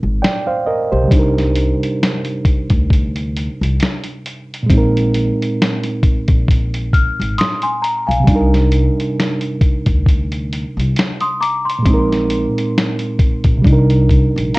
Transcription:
Already playing: A#2 G#3 C4 D#4 A#4
0.03 G#1
0.22 D5 G5, snare
0.47 C5 F5
0.66 A#4 D#5
0.92 B1 G4 C5
1.04 C3 G3
1.11 C2 D4 D#4, kick, closed hi-hat
1.19 A#4
1.38 snare, closed hi-hat
1.56 closed hi-hat
1.83 closed hi-hat
2.03 snare, closed hi-hat
2.25 closed hi-hat
2.45 kick, closed hi-hat
2.70 D2, kick, closed hi-hat
2.90 kick, closed hi-hat
3.16 closed hi-hat
3.37 closed hi-hat
3.61 C2, closed hi-hat
3.80 snare, closed hi-hat
4.04 closed hi-hat
4.26 closed hi-hat
4.54 closed hi-hat
4.63 A#2 G#3
4.70 A#1 C4, kick, closed hi-hat
4.74 D#4 A#4
4.97 closed hi-hat
5.14 closed hi-hat
5.42 closed hi-hat
5.62 snare, closed hi-hat
5.84 closed hi-hat
6.03 kick, closed hi-hat
6.28 A#1, kick, closed hi-hat
6.48 kick, closed hi-hat
6.74 closed hi-hat
6.93 F6, kick, closed hi-hat
7.20 G#1, closed hi-hat
7.38 C6 D#6, snare, closed hi-hat
7.62 G#5 C6, closed hi-hat
7.82 A#5, closed hi-hat
8.07 B1 F5 G#5
8.11 closed hi-hat
8.20 C3 G3
8.27 C2 D4, kick, closed hi-hat
8.32 D#4 A#4
8.54 snare, closed hi-hat
8.72 closed hi-hat
9.00 closed hi-hat
9.20 snare, closed hi-hat
9.41 closed hi-hat
9.61 kick, closed hi-hat
9.86 D2, kick, closed hi-hat
10.06 kick, closed hi-hat
10.32 closed hi-hat
10.53 closed hi-hat
10.77 C2, closed hi-hat
10.96 snare, closed hi-hat
11.20 C6 D#6, closed hi-hat
11.41 A#5 D6, closed hi-hat
11.65 C6
11.70 closed hi-hat
11.79 A#2
11.83 A#1 G#3 C4, kick, closed hi-hat
11.90 D#4 A#4
12.12 snare, closed hi-hat
12.30 closed hi-hat
12.58 closed hi-hat
12.78 snare, closed hi-hat
12.99 closed hi-hat
13.19 kick, closed hi-hat
13.44 A#1, kick, closed hi-hat
13.58 C3
13.62 C2 G3 D4, kick
13.67 D#4, closed hi-hat
13.73 A#4
13.90 closed hi-hat
14.09 kick, closed hi-hat
14.36 A#1, closed hi-hat
14.54 F5 A#5, closed hi-hat

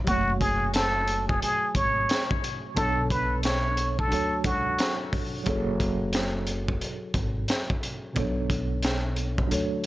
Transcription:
0.04 F#1 F#3 F#4, kick, closed hi-hat
0.09 A3 C#5
0.40 G#4, kick, closed hi-hat
0.74 A4, snare, closed hi-hat
1.08 closed hi-hat
1.28 G#4, kick
1.42 G#4, closed hi-hat
1.75 G#1 C#5, kick, closed hi-hat
2.09 snare, closed hi-hat
2.31 kick
2.44 closed hi-hat
2.74 B1 B2 B3 D4 A4, kick, closed hi-hat
2.79 A4 C#5
3.10 B4, kick, closed hi-hat
3.43 C#5, snare, closed hi-hat
3.77 closed hi-hat
3.99 A4, kick
4.07 F#3 D4 F#4
4.12 D2 A4 C#5, closed hi-hat
4.44 C#2 F#4, kick, closed hi-hat
4.79 snare, closed hi-hat
5.13 kick, open hi-hat
5.43 F#1 F#3 F#4 G#4, kick, closed hi-hat
5.48 A4 C#5
5.80 kick, closed hi-hat
6.13 snare, closed hi-hat
6.47 closed hi-hat
6.68 kick
6.81 closed hi-hat
7.14 G#1, kick, closed hi-hat
7.48 snare, closed hi-hat
7.70 kick
7.83 closed hi-hat
8.13 B1 B2 B3 D4, kick, closed hi-hat
8.18 A4 C#5
8.50 kick, closed hi-hat
8.82 snare, closed hi-hat
9.16 closed hi-hat
9.38 kick
9.47 F#3 D4 F#4
9.51 D2 A4 C#5, closed hi-hat

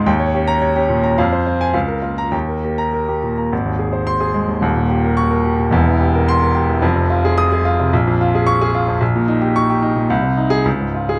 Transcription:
Already playing: C#2 G#2 G#3 G#4 G#5 C6
0.06 D#2 G5
0.20 C#5
0.34 C#4 G4
0.48 A#5
0.62 C#5
0.76 C#4 G4
0.89 A#2
1.03 C#4 A#5
1.18 F2 F5
1.33 C5
1.46 C4 F4
1.61 G#5
1.74 C#2 F5
1.88 A#4
2.02 A#3 F4
2.18 A#5
2.32 D#2 G5
2.48 A#4
2.64 A#3 G4
2.78 A#5
2.93 A#4
3.08 A#3 G4
3.23 A#2
3.38 A#3 A#5
3.52 G#1
3.66 D#2
3.79 G#4
3.93 C5
4.07 C6
4.20 G#4
4.34 G#3
4.48 D#2
4.61 D#1 D#2
4.77 A#2
4.90 G4
5.04 A#4
5.17 C#6
5.31 A#4
5.44 G4
5.58 A#2
5.71 E1 E2
5.87 E3
6.00 G4
6.15 A#4
6.28 C6
6.43 A#4
6.55 G4
6.69 E3
6.81 F1 F2
6.96 C3
7.10 F4
7.25 G#4
7.38 D#6
7.52 G#4
7.65 F4
7.80 C3
7.93 A#1
8.07 F2
8.21 F4
8.35 G#4
8.47 C#6
8.61 G#4
8.75 F4
8.88 F2
9.01 A#1
9.16 A#2
9.28 D#4
9.42 G4
9.56 C#6
9.70 G4
9.83 D#4
9.96 A#2
10.10 C2
10.23 C3
10.37 D#4
10.50 G#4
10.65 C#2
10.81 G#2
10.94 F4
11.09 G#4

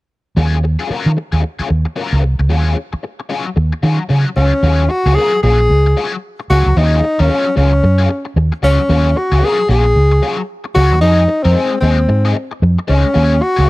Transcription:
0.37 D#2 F#3 C#4 F4 G#4
0.64 muted overdriven electric guitar stroke
0.79 F#3 C#4 F4 G#4
0.90 F#3 C#4 F4 A#4, muted fingered electric bass stroke
1.06 D#3
1.17 muted overdriven electric guitar stroke
1.32 D#2 F#3 C#4 F4 G#4
1.42 muted overdriven electric guitar stroke
1.59 F#3 C#4 F4 G#4, muted fingered electric bass stroke
1.69 D#2, muted overdriven electric guitar stroke
1.85 muted overdriven electric guitar stroke
1.96 F#3 C#4 F4 A#4
2.13 C#2
2.23 C2, muted overdriven electric guitar stroke
2.39 C#2, muted overdriven electric guitar stroke
2.49 D#2 F#3 C#4 F4 G#4
2.93 muted overdriven electric guitar stroke, muted fingered electric bass stroke
3.03 muted overdriven electric guitar stroke
3.20 muted overdriven electric guitar stroke
3.29 F#3 C#4 F4 G#4
3.46 muted overdriven electric guitar stroke
3.56 D#2, muted overdriven electric guitar stroke
3.73 muted overdriven electric guitar stroke
3.83 D#3 F#3 C#4 F4 G#4
3.99 muted overdriven electric guitar stroke
4.09 C#3 F#3 C#4 F4 G#4
4.26 muted overdriven electric guitar stroke
4.36 C#2 F#3 C#4 F4 G#4
4.53 muted overdriven electric guitar stroke
4.63 D#2 F#3 C#4 F4 G#4
4.89 F#4, muted overdriven electric guitar stroke
5.06 C#2 F#3 C#4 F4 G#4
5.16 F#3 C#4 F4 G#4 A#4
5.33 muted overdriven electric guitar stroke
5.43 A#1 F#3 C#4 F4 G#4
5.59 muted overdriven electric guitar stroke
5.70 C#2
5.86 muted overdriven electric guitar stroke
5.97 F#3 C#4 F4 G#4
6.13 muted overdriven electric guitar stroke
6.40 muted overdriven electric guitar stroke
6.50 C#2 F#3 C#4 F4 F#4 G#4
6.66 C#2, muted overdriven electric guitar stroke
6.77 D#2 F#3 C#4 D#4 F4 G#4
7.03 muted overdriven electric guitar stroke
7.19 D#2 F#3 C#4 F4 A#4
7.29 F#3 C#4 F4 G#4
7.46 muted overdriven electric guitar stroke
7.56 C#2 F#3 C#4 F4 G#4
7.72 muted overdriven electric guitar stroke
7.83 F#2, muted overdriven electric guitar stroke
7.98 F#3 C#4 F4 G#4
8.10 muted overdriven electric guitar stroke
8.25 muted overdriven electric guitar stroke
8.36 D#2, muted overdriven electric guitar stroke
8.52 muted overdriven electric guitar stroke
8.63 C#2 F#3 C#4 F4 G#4
8.80 muted overdriven electric guitar stroke
8.89 D#2 F#3 C#4 F4 G#4
9.16 F#4, muted overdriven electric guitar stroke
9.32 C#2 F#3 C#4 F4 G#4
9.42 F#3 C#4 F4 G#4 A#4
9.59 muted overdriven electric guitar stroke
9.69 A#1 F#3 C#4 F4 G#4
9.85 muted overdriven electric guitar stroke
9.96 C#2
10.11 muted overdriven electric guitar stroke
10.22 F#3 C#4 F4 G#4
10.38 muted overdriven electric guitar stroke
10.64 muted overdriven electric guitar stroke
10.75 C#2 F#3 C#4 F4 F#4 G#4
10.91 D#2, muted overdriven electric guitar stroke
11.01 F2 G#3 C4 D#4 G#4
11.28 muted overdriven electric guitar stroke
11.43 F2 G#3 C4 D#4 A#4
11.56 G#3 C4 D#4 G#4
11.72 muted overdriven electric guitar stroke
11.81 D#2 G#3 C4 D#4 G#4
11.98 muted overdriven electric guitar stroke
12.09 G#2, muted overdriven electric guitar stroke
12.25 G#3 C4 D#4 G#4
12.36 muted overdriven electric guitar stroke
12.51 muted overdriven electric guitar stroke
12.62 F2, muted overdriven electric guitar stroke
12.79 muted overdriven electric guitar stroke
12.88 C#2 G#3 C4 C#4 D#4 G#4
13.04 muted overdriven electric guitar stroke
13.14 D#2 F#3 C#4 F4 G#4
13.41 F#4, muted overdriven electric guitar stroke
13.56 C#2 F#3 C#4 F4 G#4

